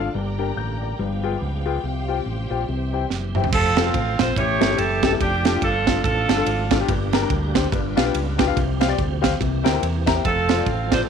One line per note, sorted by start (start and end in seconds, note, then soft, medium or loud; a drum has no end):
0.00 0.97 D3 medium
0.00 0.13 F3 medium
0.00 0.13 A3 medium
0.00 0.11 D4 medium
0.00 0.11 F4 medium
0.00 0.13 F4 medium
0.00 0.11 A4 medium
0.00 0.97 D5 medium
0.00 0.13 F5 medium
0.00 0.13 A5 medium
0.14 0.51 G1 medium
0.14 0.78 G2 medium
0.14 0.98 G3 medium
0.14 0.98 A#3 medium
0.14 3.50 G4 medium
0.14 0.99 A#4 medium
0.14 0.98 G5 medium
0.14 0.99 A#5 medium
0.38 0.49 D4 medium
0.38 0.49 G4 medium
0.38 0.49 A#4 medium
0.38 0.49 G5 medium
0.56 0.93 A1 medium
0.56 0.80 A#5 soft
0.56 0.81 G6 medium
0.82 1.23 D5 soft
0.82 1.22 A#5 medium
0.99 1.35 G1 medium
0.99 1.62 G2 medium
0.99 2.67 F3 medium
0.99 1.83 G#3 medium
0.99 1.83 B3 medium
0.99 1.83 B4 medium
0.99 2.67 F5 medium
0.99 3.50 G5 medium
1.23 1.34 F4 medium
1.23 1.34 G#4 medium
1.23 1.34 B4 medium
1.23 1.34 G5 medium
1.41 1.77 C#2 medium
1.66 1.76 F4 medium
1.66 1.76 G#4 medium
1.66 1.76 B4 medium
1.66 1.76 G5 medium
1.84 2.20 C2 medium
1.84 2.47 C3 medium
1.84 3.51 G3 medium
1.84 3.51 C4 medium
1.84 3.51 G4 medium
1.84 2.67 C5 medium
2.08 2.18 F4 medium
2.08 2.19 G4 medium
2.08 2.19 C5 medium
2.08 2.19 G5 medium
2.26 2.47 A1 medium
2.50 2.66 A#1 medium
2.50 2.61 F4 medium
2.50 2.61 G4 medium
2.50 2.61 C5 medium
2.50 2.61 G5 medium
2.68 3.04 C2 medium
2.68 3.31 C3 medium
2.68 3.52 E3 medium
2.68 3.52 C5 medium
2.68 3.52 E5 medium
2.93 3.03 E4 medium
2.93 3.03 G4 medium
2.93 3.03 C5 medium
2.93 3.03 G5 medium
3.10 3.46 F#1 medium
3.10 snare soft
3.35 3.45 E4 medium
3.35 3.46 G4 medium
3.35 3.46 C5 medium
3.35 3.46 G5 medium
3.35 mid tom medium
3.44 floor tom medium
3.52 3.88 F1 loud
3.52 4.36 F3 medium
3.52 6.86 A3 medium
3.52 4.33 C4 medium
3.52 4.36 C4 medium
3.52 4.33 F4 medium
3.52 3.92 A4 loud
3.52 4.37 A4 medium
3.52 kick loud
3.52 crash loud
3.77 3.82 C4 medium
3.77 3.82 F4 medium
3.77 3.83 A4 medium
3.77 snare loud
3.77 ride medium
3.86 3.96 C4 medium
3.86 3.97 F4 medium
3.86 3.97 A4 medium
3.94 4.15 A1 medium
3.94 kick loud
3.94 ride medium
4.19 4.34 A#1 medium
4.19 4.29 C4 medium
4.19 4.29 F4 medium
4.19 4.36 C5 loud
4.19 4.30 C5 medium
4.19 kick medium
4.19 snare loud
4.19 ride medium
4.36 4.57 A1 loud
4.36 4.99 A2 medium
4.36 5.20 E3 medium
4.36 5.20 C#4 medium
4.36 5.17 E4 medium
4.36 5.20 G4 medium
4.36 5.17 G4 medium
4.36 4.79 C#5 loud
4.36 kick loud
4.36 ride medium
4.61 4.76 G1 loud
4.61 4.66 G3 medium
4.61 4.66 A3 medium
4.61 4.66 C#4 medium
4.61 4.66 E4 medium
4.61 4.66 A4 medium
4.61 snare loud
4.61 ride medium
4.70 4.80 G3 medium
4.70 4.81 A3 medium
4.70 4.81 C#4 medium
4.70 4.81 E4 medium
4.70 4.81 G4 medium
4.78 5.14 F#1 loud
4.78 5.03 A4 loud
4.78 ride medium
5.03 5.08 G3 medium
5.03 5.08 A3 medium
5.03 5.08 C#4 medium
5.03 5.09 E4 medium
5.03 5.09 G4 medium
5.03 5.12 A4 loud
5.03 kick loud
5.03 snare loud
5.03 ride medium
5.12 5.21 G3 medium
5.12 5.21 A3 medium
5.12 5.21 C#4 medium
5.12 5.21 E4 medium
5.12 5.21 A4 medium
5.20 5.56 F1 loud
5.20 6.87 F3 medium
5.20 8.53 D4 medium
5.20 5.62 D4 medium
5.20 6.87 F4 medium
5.20 5.60 G4 medium
5.20 kick loud
5.20 ride medium
5.45 5.50 D4 medium
5.45 5.50 F4 medium
5.45 5.50 A4 medium
5.45 snare loud
5.45 ride medium
5.54 5.64 D4 medium
5.54 5.65 F4 medium
5.54 5.65 G4 medium
5.62 5.98 G1 medium
5.62 6.04 D4 medium
5.62 6.04 F4 medium
5.62 6.02 A4 loud
5.62 kick loud
5.62 ride medium
5.87 5.97 D4 medium
5.87 5.97 F4 medium
5.87 5.97 A4 medium
5.87 kick loud
5.87 snare loud
5.87 ride medium
6.04 6.25 A1 medium
6.04 6.85 D4 medium
6.04 6.85 F4 medium
6.04 6.67 A4 medium
6.04 kick loud
6.04 ride medium
6.28 6.44 G1 loud
6.28 6.34 D4 medium
6.28 6.34 F4 medium
6.28 6.34 A4 medium
6.28 snare loud
6.28 ride medium
6.38 6.48 D4 medium
6.38 6.48 F4 medium
6.38 6.48 A4 medium
6.46 6.82 G#1 loud
6.46 ride medium
6.71 6.76 D4 loud
6.71 6.76 F4 medium
6.71 6.76 A4 loud
6.71 kick loud
6.71 snare loud
6.71 ride medium
6.79 6.88 D4 medium
6.79 6.89 F4 medium
6.79 6.89 G4 loud
6.88 7.24 G1 loud
6.88 7.51 G2 medium
6.88 9.38 G3 medium
6.88 7.72 A#3 medium
6.88 7.72 G4 medium
6.88 kick loud
6.88 ride medium
7.13 7.18 D4 medium
7.13 7.18 G4 medium
7.13 7.18 A#4 loud
7.13 snare loud
7.13 ride medium
7.21 7.32 D4 medium
7.21 7.32 G4 medium
7.21 7.32 A#4 medium
7.30 7.66 D2 loud
7.30 kick loud
7.30 ride medium
7.54 7.64 D4 medium
7.54 7.65 G4 medium
7.54 7.65 C5 medium
7.54 kick loud
7.54 snare loud
7.54 ride medium
7.72 7.93 G1 loud
7.72 8.35 G2 medium
7.72 8.56 B3 medium
7.72 8.56 F4 medium
7.72 kick loud
7.72 ride medium
7.97 8.12 B1 loud
7.97 8.02 D4 loud
7.97 8.02 F4 medium
7.97 8.02 G4 medium
7.97 8.02 B4 medium
7.97 8.02 F5 loud
7.97 snare loud
7.97 ride medium
8.05 8.15 D4 medium
8.05 8.16 F4 medium
8.05 8.16 G4 medium
8.05 8.16 B4 medium
8.05 8.16 G5 loud
8.14 8.50 C#2 loud
8.14 ride medium
8.38 8.44 D4 loud
8.38 8.44 F4 medium
8.38 8.44 G4 medium
8.38 8.44 B4 medium
8.38 8.44 G5 loud
8.38 kick loud
8.38 snare loud
8.38 ride medium
8.47 8.56 D4 medium
8.47 8.56 F4 medium
8.47 8.57 G4 medium
8.47 8.57 B4 medium
8.47 8.57 F5 loud
8.56 8.92 C2 loud
8.56 9.19 C3 medium
8.56 9.39 F3 medium
8.56 9.39 C4 medium
8.56 10.23 G4 medium
8.56 kick loud
8.56 ride medium
8.80 8.85 G4 medium
8.80 8.86 C5 medium
8.80 8.86 F5 loud
8.80 snare loud
8.80 ride medium
8.88 8.99 G4 medium
8.88 8.99 C5 medium
8.88 9.00 D5 medium
8.98 9.34 D2 medium
8.98 kick loud
8.98 ride medium
9.21 9.32 G4 medium
9.21 9.32 C5 medium
9.21 9.33 F5 loud
9.21 kick loud
9.21 snare loud
9.21 ride medium
9.40 9.62 C2 loud
9.40 10.03 C3 medium
9.40 10.24 E3 medium
9.40 10.24 A#3 medium
9.40 11.09 C4 medium
9.40 kick loud
9.40 ride medium
9.64 9.80 D2 loud
9.64 9.69 E4 medium
9.64 9.69 G4 medium
9.64 9.70 A#4 medium
9.64 9.70 C5 medium
9.64 9.70 G5 loud
9.64 snare loud
9.64 ride medium
9.73 9.84 E4 medium
9.73 9.84 G4 medium
9.73 9.84 A#4 medium
9.73 9.84 C5 medium
9.73 9.84 G5 medium
9.82 10.18 E2 medium
9.82 ride medium
10.06 10.12 E4 loud
10.06 10.12 G4 medium
10.06 10.12 A#4 medium
10.06 10.12 C5 medium
10.06 10.12 A#5 loud
10.06 kick loud
10.06 snare loud
10.06 ride medium
10.15 10.24 E4 medium
10.15 10.24 G4 medium
10.15 10.25 A#4 medium
10.15 10.25 C5 medium
10.15 10.25 G5 medium
10.24 10.60 F1 loud
10.24 11.09 F3 medium
10.24 11.09 A3 medium
10.24 11.05 C4 medium
10.24 11.05 F4 medium
10.24 11.09 A4 medium
10.24 10.64 A4 medium
10.24 kick loud
10.24 ride medium
10.49 10.54 F4 medium
10.49 10.54 A4 medium
10.49 10.55 C5 medium
10.49 snare loud
10.49 ride medium
10.57 10.68 F4 medium
10.57 10.68 A4 medium
10.57 10.68 D5 medium
10.66 11.02 A1 medium
10.66 kick medium
10.66 ride medium
10.91 11.01 F4 medium
10.91 11.02 A4 medium
10.91 11.00 C5 medium
10.91 11.02 D5 medium
10.91 kick loud
10.91 snare loud
10.91 ride medium